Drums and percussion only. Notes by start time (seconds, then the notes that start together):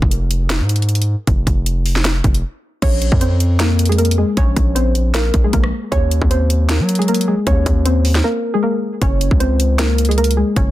0.02 kick
0.11 closed hi-hat
0.31 closed hi-hat
0.50 snare, closed hi-hat
0.69 closed hi-hat
0.76 closed hi-hat
0.82 closed hi-hat
0.89 closed hi-hat
0.95 closed hi-hat
1.02 closed hi-hat
1.27 kick, closed hi-hat
1.47 kick, closed hi-hat
1.66 closed hi-hat
1.86 open hi-hat
1.96 snare
2.05 snare, closed hi-hat
2.24 kick, closed hi-hat
2.34 closed hi-hat
2.82 kick, closed hi-hat, crash
3.02 closed hi-hat
3.12 kick
3.21 closed hi-hat
3.40 closed hi-hat
3.60 snare, closed hi-hat
3.79 closed hi-hat
3.85 closed hi-hat
3.92 closed hi-hat
3.98 closed hi-hat
4.05 closed hi-hat
4.11 closed hi-hat
4.37 kick, closed hi-hat
4.56 kick, closed hi-hat
4.76 closed hi-hat
4.95 closed hi-hat
5.14 snare, closed hi-hat
5.34 kick, closed hi-hat
5.53 kick, closed hi-hat
5.64 cross-stick
5.92 kick, closed hi-hat
6.11 closed hi-hat
6.22 kick
6.31 closed hi-hat
6.50 closed hi-hat
6.69 snare, closed hi-hat
6.89 closed hi-hat
6.95 closed hi-hat
7.02 closed hi-hat
7.08 closed hi-hat
7.15 closed hi-hat
7.21 closed hi-hat
7.47 kick, closed hi-hat
7.66 kick, closed hi-hat
7.86 closed hi-hat
8.05 open hi-hat
8.15 snare
9.02 kick, closed hi-hat
9.21 closed hi-hat
9.31 kick
9.40 closed hi-hat
9.60 closed hi-hat
9.79 snare, closed hi-hat
9.98 closed hi-hat
10.05 closed hi-hat
10.11 closed hi-hat
10.18 closed hi-hat
10.24 closed hi-hat
10.31 closed hi-hat
10.56 kick, closed hi-hat